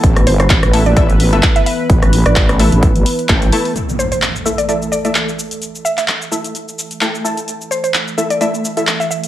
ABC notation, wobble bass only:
X:1
M:4/4
L:1/16
Q:"Swing 16ths" 1/4=129
K:C
V:1 name="Wobble bass" clef=bass
A,,,2 G,,,2 A,,, A,,,3 A,,,4 z4 | A,,,3 A,,,4 A,,,3 z2 A,,,2 z2 | z16 | z16 |
z16 |]